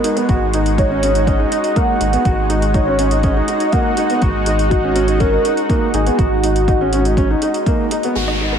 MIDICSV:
0, 0, Header, 1, 8, 480
1, 0, Start_track
1, 0, Tempo, 491803
1, 280, Time_signature, 4, 2, 24, 8
1, 8383, End_track
2, 0, Start_track
2, 0, Title_t, "Soft synth lead"
2, 0, Program_c, 0, 80
2, 0, Note_on_c, 0, 70, 81
2, 171, Note_off_c, 0, 70, 0
2, 768, Note_on_c, 0, 73, 85
2, 1243, Note_on_c, 0, 75, 92
2, 1258, Note_off_c, 0, 73, 0
2, 1725, Note_on_c, 0, 78, 103
2, 1740, Note_off_c, 0, 75, 0
2, 2203, Note_off_c, 0, 78, 0
2, 2670, Note_on_c, 0, 73, 83
2, 3145, Note_on_c, 0, 75, 92
2, 3159, Note_off_c, 0, 73, 0
2, 3628, Note_on_c, 0, 78, 103
2, 3643, Note_off_c, 0, 75, 0
2, 4114, Note_off_c, 0, 78, 0
2, 4586, Note_on_c, 0, 66, 87
2, 5069, Note_on_c, 0, 70, 104
2, 5083, Note_off_c, 0, 66, 0
2, 5555, Note_off_c, 0, 70, 0
2, 5792, Note_on_c, 0, 68, 100
2, 6029, Note_on_c, 0, 66, 107
2, 6044, Note_off_c, 0, 68, 0
2, 7475, Note_off_c, 0, 66, 0
2, 8383, End_track
3, 0, Start_track
3, 0, Title_t, "Synth arpeggio sound"
3, 0, Program_c, 1, 84
3, 7961, Note_on_c, 1, 68, 70
3, 8041, Note_off_c, 1, 68, 0
3, 8081, Note_on_c, 1, 75, 87
3, 8195, Note_off_c, 1, 75, 0
3, 8322, Note_on_c, 1, 71, 63
3, 8383, Note_off_c, 1, 71, 0
3, 8383, End_track
4, 0, Start_track
4, 0, Title_t, "Felt piano"
4, 0, Program_c, 2, 0
4, 39, Note_on_c, 2, 63, 78
4, 116, Note_off_c, 2, 63, 0
4, 160, Note_on_c, 2, 59, 74
4, 237, Note_off_c, 2, 59, 0
4, 285, Note_on_c, 2, 66, 84
4, 437, Note_off_c, 2, 66, 0
4, 528, Note_on_c, 2, 63, 76
4, 679, Note_off_c, 2, 63, 0
4, 763, Note_on_c, 2, 63, 74
4, 839, Note_off_c, 2, 63, 0
4, 882, Note_on_c, 2, 61, 71
4, 958, Note_off_c, 2, 61, 0
4, 1004, Note_on_c, 2, 61, 70
4, 1080, Note_off_c, 2, 61, 0
4, 1120, Note_on_c, 2, 63, 66
4, 1197, Note_off_c, 2, 63, 0
4, 1240, Note_on_c, 2, 61, 80
4, 1317, Note_off_c, 2, 61, 0
4, 1362, Note_on_c, 2, 63, 75
4, 1438, Note_off_c, 2, 63, 0
4, 1480, Note_on_c, 2, 63, 70
4, 1634, Note_off_c, 2, 63, 0
4, 1718, Note_on_c, 2, 58, 78
4, 1872, Note_off_c, 2, 58, 0
4, 1959, Note_on_c, 2, 63, 77
4, 2036, Note_off_c, 2, 63, 0
4, 2077, Note_on_c, 2, 59, 78
4, 2155, Note_off_c, 2, 59, 0
4, 2198, Note_on_c, 2, 66, 84
4, 2352, Note_off_c, 2, 66, 0
4, 2436, Note_on_c, 2, 63, 74
4, 2591, Note_off_c, 2, 63, 0
4, 2680, Note_on_c, 2, 63, 81
4, 2757, Note_off_c, 2, 63, 0
4, 2806, Note_on_c, 2, 61, 73
4, 2881, Note_off_c, 2, 61, 0
4, 2919, Note_on_c, 2, 61, 77
4, 2996, Note_off_c, 2, 61, 0
4, 3043, Note_on_c, 2, 63, 69
4, 3119, Note_off_c, 2, 63, 0
4, 3157, Note_on_c, 2, 61, 85
4, 3235, Note_off_c, 2, 61, 0
4, 3285, Note_on_c, 2, 63, 77
4, 3360, Note_off_c, 2, 63, 0
4, 3402, Note_on_c, 2, 63, 69
4, 3555, Note_off_c, 2, 63, 0
4, 3645, Note_on_c, 2, 58, 84
4, 3797, Note_off_c, 2, 58, 0
4, 3882, Note_on_c, 2, 63, 83
4, 3958, Note_off_c, 2, 63, 0
4, 4002, Note_on_c, 2, 59, 73
4, 4078, Note_off_c, 2, 59, 0
4, 4122, Note_on_c, 2, 66, 90
4, 4275, Note_off_c, 2, 66, 0
4, 4362, Note_on_c, 2, 63, 80
4, 4515, Note_off_c, 2, 63, 0
4, 4598, Note_on_c, 2, 63, 78
4, 4676, Note_off_c, 2, 63, 0
4, 4723, Note_on_c, 2, 61, 71
4, 4799, Note_off_c, 2, 61, 0
4, 4835, Note_on_c, 2, 61, 77
4, 4913, Note_off_c, 2, 61, 0
4, 4952, Note_on_c, 2, 63, 71
4, 5031, Note_off_c, 2, 63, 0
4, 5078, Note_on_c, 2, 61, 84
4, 5156, Note_off_c, 2, 61, 0
4, 5195, Note_on_c, 2, 63, 72
4, 5273, Note_off_c, 2, 63, 0
4, 5321, Note_on_c, 2, 63, 70
4, 5474, Note_off_c, 2, 63, 0
4, 5558, Note_on_c, 2, 58, 86
4, 5712, Note_off_c, 2, 58, 0
4, 5802, Note_on_c, 2, 63, 80
4, 5878, Note_off_c, 2, 63, 0
4, 5918, Note_on_c, 2, 59, 74
4, 5996, Note_off_c, 2, 59, 0
4, 6041, Note_on_c, 2, 66, 86
4, 6194, Note_off_c, 2, 66, 0
4, 6284, Note_on_c, 2, 63, 77
4, 6436, Note_off_c, 2, 63, 0
4, 6523, Note_on_c, 2, 63, 83
4, 6599, Note_off_c, 2, 63, 0
4, 6646, Note_on_c, 2, 61, 74
4, 6721, Note_off_c, 2, 61, 0
4, 6767, Note_on_c, 2, 61, 75
4, 6842, Note_off_c, 2, 61, 0
4, 6885, Note_on_c, 2, 63, 67
4, 6960, Note_off_c, 2, 63, 0
4, 7004, Note_on_c, 2, 61, 86
4, 7080, Note_off_c, 2, 61, 0
4, 7129, Note_on_c, 2, 63, 78
4, 7203, Note_off_c, 2, 63, 0
4, 7246, Note_on_c, 2, 63, 74
4, 7398, Note_off_c, 2, 63, 0
4, 7492, Note_on_c, 2, 58, 80
4, 7641, Note_off_c, 2, 58, 0
4, 7727, Note_on_c, 2, 63, 83
4, 7802, Note_off_c, 2, 63, 0
4, 7852, Note_on_c, 2, 59, 80
4, 7925, Note_off_c, 2, 59, 0
4, 7964, Note_on_c, 2, 66, 69
4, 8116, Note_off_c, 2, 66, 0
4, 8205, Note_on_c, 2, 63, 60
4, 8357, Note_off_c, 2, 63, 0
4, 8383, End_track
5, 0, Start_track
5, 0, Title_t, "Analog synth pad"
5, 0, Program_c, 3, 89
5, 0, Note_on_c, 3, 56, 80
5, 0, Note_on_c, 3, 59, 88
5, 0, Note_on_c, 3, 66, 74
5, 235, Note_off_c, 3, 59, 0
5, 235, Note_off_c, 3, 66, 0
5, 284, Note_on_c, 3, 63, 78
5, 294, Note_on_c, 3, 66, 92
5, 7917, Note_off_c, 3, 56, 0
5, 7923, Note_off_c, 3, 63, 0
5, 7928, Note_off_c, 3, 66, 0
5, 7960, Note_on_c, 3, 66, 66
5, 7961, Note_on_c, 3, 56, 73
5, 7963, Note_on_c, 3, 59, 82
5, 8383, Note_off_c, 3, 56, 0
5, 8383, Note_off_c, 3, 59, 0
5, 8383, Note_off_c, 3, 66, 0
5, 8383, End_track
6, 0, Start_track
6, 0, Title_t, "Sub bass"
6, 0, Program_c, 4, 38
6, 283, Note_on_c, 4, 32, 94
6, 1416, Note_off_c, 4, 32, 0
6, 1956, Note_on_c, 4, 32, 84
6, 2116, Note_off_c, 4, 32, 0
6, 2198, Note_on_c, 4, 32, 98
6, 3334, Note_off_c, 4, 32, 0
6, 4118, Note_on_c, 4, 32, 96
6, 5254, Note_off_c, 4, 32, 0
6, 5791, Note_on_c, 4, 32, 87
6, 5954, Note_off_c, 4, 32, 0
6, 6038, Note_on_c, 4, 32, 98
6, 7174, Note_off_c, 4, 32, 0
6, 7958, Note_on_c, 4, 32, 76
6, 8383, Note_off_c, 4, 32, 0
6, 8383, End_track
7, 0, Start_track
7, 0, Title_t, "Downlifter"
7, 0, Program_c, 5, 103
7, 7956, Note_on_c, 5, 60, 52
7, 8383, Note_off_c, 5, 60, 0
7, 8383, End_track
8, 0, Start_track
8, 0, Title_t, "Drums"
8, 41, Note_on_c, 9, 42, 73
8, 139, Note_off_c, 9, 42, 0
8, 163, Note_on_c, 9, 42, 39
8, 260, Note_off_c, 9, 42, 0
8, 281, Note_on_c, 9, 42, 28
8, 283, Note_on_c, 9, 36, 94
8, 379, Note_off_c, 9, 42, 0
8, 380, Note_off_c, 9, 36, 0
8, 522, Note_on_c, 9, 42, 70
8, 620, Note_off_c, 9, 42, 0
8, 644, Note_on_c, 9, 42, 38
8, 741, Note_off_c, 9, 42, 0
8, 763, Note_on_c, 9, 36, 93
8, 764, Note_on_c, 9, 42, 28
8, 860, Note_off_c, 9, 36, 0
8, 862, Note_off_c, 9, 42, 0
8, 1005, Note_on_c, 9, 42, 69
8, 1102, Note_off_c, 9, 42, 0
8, 1124, Note_on_c, 9, 42, 43
8, 1222, Note_off_c, 9, 42, 0
8, 1241, Note_on_c, 9, 36, 90
8, 1244, Note_on_c, 9, 42, 31
8, 1339, Note_off_c, 9, 36, 0
8, 1342, Note_off_c, 9, 42, 0
8, 1482, Note_on_c, 9, 42, 74
8, 1580, Note_off_c, 9, 42, 0
8, 1600, Note_on_c, 9, 42, 42
8, 1698, Note_off_c, 9, 42, 0
8, 1719, Note_on_c, 9, 36, 97
8, 1720, Note_on_c, 9, 42, 30
8, 1817, Note_off_c, 9, 36, 0
8, 1817, Note_off_c, 9, 42, 0
8, 1959, Note_on_c, 9, 42, 67
8, 2057, Note_off_c, 9, 42, 0
8, 2080, Note_on_c, 9, 42, 39
8, 2177, Note_off_c, 9, 42, 0
8, 2198, Note_on_c, 9, 36, 99
8, 2198, Note_on_c, 9, 42, 30
8, 2295, Note_off_c, 9, 42, 0
8, 2296, Note_off_c, 9, 36, 0
8, 2439, Note_on_c, 9, 42, 65
8, 2536, Note_off_c, 9, 42, 0
8, 2560, Note_on_c, 9, 42, 37
8, 2657, Note_off_c, 9, 42, 0
8, 2677, Note_on_c, 9, 36, 101
8, 2677, Note_on_c, 9, 42, 27
8, 2774, Note_off_c, 9, 42, 0
8, 2775, Note_off_c, 9, 36, 0
8, 2916, Note_on_c, 9, 42, 65
8, 3014, Note_off_c, 9, 42, 0
8, 3036, Note_on_c, 9, 42, 39
8, 3134, Note_off_c, 9, 42, 0
8, 3155, Note_on_c, 9, 42, 30
8, 3157, Note_on_c, 9, 36, 89
8, 3252, Note_off_c, 9, 42, 0
8, 3255, Note_off_c, 9, 36, 0
8, 3396, Note_on_c, 9, 42, 68
8, 3494, Note_off_c, 9, 42, 0
8, 3516, Note_on_c, 9, 42, 41
8, 3614, Note_off_c, 9, 42, 0
8, 3635, Note_on_c, 9, 42, 28
8, 3639, Note_on_c, 9, 36, 97
8, 3733, Note_off_c, 9, 42, 0
8, 3736, Note_off_c, 9, 36, 0
8, 3875, Note_on_c, 9, 42, 66
8, 3973, Note_off_c, 9, 42, 0
8, 3999, Note_on_c, 9, 42, 36
8, 4097, Note_off_c, 9, 42, 0
8, 4115, Note_on_c, 9, 42, 27
8, 4120, Note_on_c, 9, 36, 92
8, 4213, Note_off_c, 9, 42, 0
8, 4217, Note_off_c, 9, 36, 0
8, 4355, Note_on_c, 9, 42, 63
8, 4453, Note_off_c, 9, 42, 0
8, 4481, Note_on_c, 9, 42, 36
8, 4578, Note_off_c, 9, 42, 0
8, 4598, Note_on_c, 9, 36, 100
8, 4599, Note_on_c, 9, 42, 26
8, 4696, Note_off_c, 9, 36, 0
8, 4697, Note_off_c, 9, 42, 0
8, 4837, Note_on_c, 9, 42, 65
8, 4935, Note_off_c, 9, 42, 0
8, 4958, Note_on_c, 9, 42, 38
8, 5055, Note_off_c, 9, 42, 0
8, 5077, Note_on_c, 9, 42, 30
8, 5079, Note_on_c, 9, 36, 90
8, 5174, Note_off_c, 9, 42, 0
8, 5177, Note_off_c, 9, 36, 0
8, 5319, Note_on_c, 9, 42, 65
8, 5416, Note_off_c, 9, 42, 0
8, 5439, Note_on_c, 9, 42, 38
8, 5537, Note_off_c, 9, 42, 0
8, 5558, Note_on_c, 9, 36, 93
8, 5560, Note_on_c, 9, 42, 27
8, 5656, Note_off_c, 9, 36, 0
8, 5657, Note_off_c, 9, 42, 0
8, 5796, Note_on_c, 9, 42, 67
8, 5894, Note_off_c, 9, 42, 0
8, 5920, Note_on_c, 9, 42, 37
8, 6017, Note_off_c, 9, 42, 0
8, 6038, Note_on_c, 9, 36, 104
8, 6039, Note_on_c, 9, 42, 27
8, 6136, Note_off_c, 9, 36, 0
8, 6137, Note_off_c, 9, 42, 0
8, 6281, Note_on_c, 9, 42, 67
8, 6379, Note_off_c, 9, 42, 0
8, 6401, Note_on_c, 9, 42, 38
8, 6498, Note_off_c, 9, 42, 0
8, 6518, Note_on_c, 9, 36, 94
8, 6521, Note_on_c, 9, 42, 29
8, 6616, Note_off_c, 9, 36, 0
8, 6618, Note_off_c, 9, 42, 0
8, 6760, Note_on_c, 9, 42, 67
8, 6858, Note_off_c, 9, 42, 0
8, 6883, Note_on_c, 9, 42, 38
8, 6981, Note_off_c, 9, 42, 0
8, 6998, Note_on_c, 9, 36, 92
8, 7004, Note_on_c, 9, 42, 32
8, 7096, Note_off_c, 9, 36, 0
8, 7102, Note_off_c, 9, 42, 0
8, 7240, Note_on_c, 9, 42, 64
8, 7338, Note_off_c, 9, 42, 0
8, 7362, Note_on_c, 9, 42, 39
8, 7459, Note_off_c, 9, 42, 0
8, 7480, Note_on_c, 9, 36, 97
8, 7481, Note_on_c, 9, 42, 28
8, 7577, Note_off_c, 9, 36, 0
8, 7578, Note_off_c, 9, 42, 0
8, 7722, Note_on_c, 9, 42, 69
8, 7819, Note_off_c, 9, 42, 0
8, 7841, Note_on_c, 9, 42, 39
8, 7938, Note_off_c, 9, 42, 0
8, 8383, End_track
0, 0, End_of_file